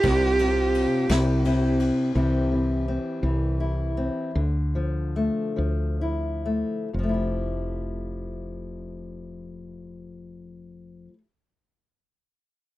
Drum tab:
RD |xxxxxx|------|------|------|
SD |---o--|------|------|------|
BD |o-----|------|------|------|

RD |------|
SD |------|
BD |------|